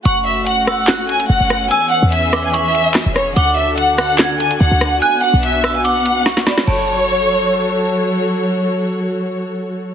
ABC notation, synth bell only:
X:1
M:4/4
L:1/8
Q:1/4=145
K:F#m
V:1 name="Synth bell"
c'3 e' f'2 z2 | e'3 d' c'2 z2 | d'3 f' g'2 z2 | f'3 e' d'2 c' b |
a6 z2 | z8 |]